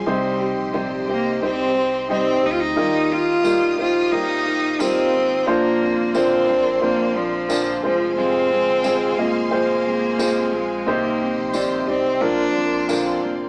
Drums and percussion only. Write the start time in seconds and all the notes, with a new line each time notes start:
3.44 tambourine
4.80 tambourine
6.15 tambourine
7.50 tambourine
8.84 tambourine
10.20 tambourine
11.54 tambourine
12.89 tambourine